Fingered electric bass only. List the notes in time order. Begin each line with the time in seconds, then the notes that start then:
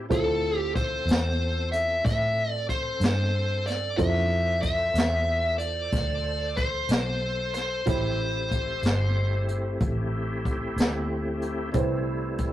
0.11 D2
1.06 E2
2.04 A2
3.00 G2
3.98 F2
4.94 E2
5.92 D2
6.89 B1
7.87 A1
8.83 G1
9.81 A1
10.76 D2
11.74 C2